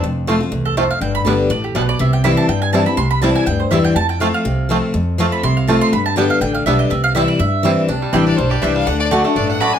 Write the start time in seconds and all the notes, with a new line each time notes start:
0.02 F1 F2
0.27 F3 A3 C4 F4
0.40 C4 F4
0.52 C2 E2
0.65 A4
0.77 F2 A3 C4 F4 C5
0.91 F5
1.01 G1 G2 G5
1.15 B5
1.25 G1 D3 G3 B3 D4 G4
1.50 A1 A2 D5
1.64 G4
1.75 B1 B2 G3 B3 D4 B4
1.89 D5
1.99 C2 C3 E5
2.13 G5
2.24 E3 G3 C4 E4 B5
2.37 A5
2.48 G2 G5
2.62 G#5
2.73 E3 G3 C4 E4 A5
2.86 C4 E4 B5
2.97 C2 C3 C6
3.11 B5
3.21 E3 G3 C4 E4 A5
3.36 G#5
3.46 D2 G2 G5
3.60 C5
3.71 E2 E3 G3 C4 E4 E5
3.84 G5
3.95 F2 A5
4.09 G5
4.20 F3 A3 C4 F4 F5
4.34 F5
4.45 C2 C3
4.69 F3 A3 C4 F4
4.94 F2
5.18 F3 A3 C4 F4
5.32 B5
5.43 C2 C3 C6
5.57 F5
5.67 F3 A3 C4 F4 A5
5.81 C6
5.92 G2 B5
6.06 A5
6.16 D3 G3 B3 D4 G4 G5
6.30 F5
6.41 A1 D3 G5
6.54 F5
6.66 B1 D3 G3 B3 D4 G4 E5
6.79 D#5
6.90 C2 C3 E5
7.04 F5
7.15 E3 G3 C4 E4 E5
7.28 D5
7.39 G2 E5
7.63 E3 G3 C4 E4
7.88 C2 C3 D4
8.02 G3
8.13 A1 E3 G3 C4 D4 E4 G4 D5 G5
8.26 D4 D5
8.37 B1 G2 G3 C5
8.50 G4 D5
8.62 C2 E3 G3 C4 D4 E4 D5 E5 G5
8.75 G3 F5
8.87 D2 D3 D4 F#5
9.00 D4 D5
9.11 D3 A3 D4 F#4 D5 A5
9.24 A3 D4 F#4
9.36 A1 G2 D4 D5
9.48 D4 F#5
9.60 F#2 A3 D4 F#4 D5 A5 B5
9.73 D4 G#5